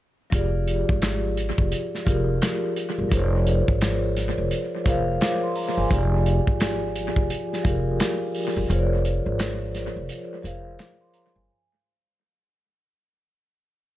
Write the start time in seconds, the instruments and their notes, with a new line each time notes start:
0.30 upright bass F1, vibraphone F3 F4 G4 G#4, kick, closed hi-hat
0.35 vibraphone D5
0.68 closed hi-hat
0.89 upright bass G#1, kick
1.02 snare, clap, closed hi-hat
1.37 closed hi-hat
1.58 upright bass F1, kick
1.72 closed hi-hat
1.95 snare
2.05 upright bass F1, vibraphone F3 F4 G4 G#4, kick, closed hi-hat
2.10 vibraphone A#4
2.42 snare, clap, closed hi-hat
2.76 closed hi-hat
2.98 upright bass G1
3.09 upright bass F1, vibraphone F3 F4 G#4 A#4 C5, kick, closed hi-hat
3.14 vibraphone C#5
3.20 vibraphone D5
3.47 closed hi-hat
3.68 upright bass G#1, kick
3.81 snare, clap, closed hi-hat
4.17 snare, closed hi-hat
4.38 upright bass F1
4.51 closed hi-hat
4.84 upright bass F1, vibraphone F3 F4 G#4 A#4 C5, kick, closed hi-hat
4.89 vibraphone F5
5.21 vibraphone D6, snare, clap, closed hi-hat
5.43 vibraphone C6
5.56 vibraphone A#5, open hi-hat
5.77 upright bass G1, vibraphone G#5
5.88 upright bass F1, vibraphone F3 F4 G4 G#4, kick, closed hi-hat
5.93 vibraphone D5
6.26 closed hi-hat
6.47 upright bass G#1, kick
6.60 snare, clap, closed hi-hat
6.95 closed hi-hat
7.16 upright bass F1, kick
7.30 closed hi-hat
7.53 snare
7.63 upright bass F1, vibraphone F3 F4 G4 G#4, kick, closed hi-hat
7.68 vibraphone A#4
8.00 snare, clap, closed hi-hat
8.35 open hi-hat
8.56 upright bass G1
8.68 upright bass F1, vibraphone F3 F4 G#4 A#4 C5, closed hi-hat
8.72 vibraphone C#5
8.79 vibraphone D5
9.05 closed hi-hat
9.26 upright bass G#1
9.39 snare, clap, closed hi-hat
9.75 snare, closed hi-hat
9.96 upright bass F1
10.09 closed hi-hat
10.43 upright bass F1, vibraphone F3 F4 G#4 A#4 C5, closed hi-hat
10.47 vibraphone F5
10.79 vibraphone D6, snare, clap, closed hi-hat
11.01 vibraphone C6
11.14 vibraphone A#5, closed hi-hat
11.36 upright bass G1, vibraphone G#5